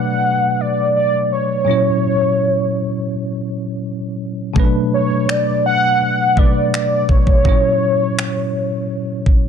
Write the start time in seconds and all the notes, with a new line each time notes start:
Already playing: B2 F#3 A3 D4 B4 F#5
0.61 D5
0.96 D5
1.32 C#5
1.65 A#2 F#3 C#4
1.69 E4 C#5
4.53 B2 F#3 A3, kick
4.58 C#4 B4
4.64 D4
4.94 C#5
5.29 D5, finger snap
5.66 F#5
6.36 B2 F#3 A3 D4 B4 D5, kick
6.74 D5, finger snap
7.09 C#5, kick
7.27 kick
7.43 G2 F#3 C#4, kick
7.47 A#2 E4 C#5
8.19 finger snap
9.26 kick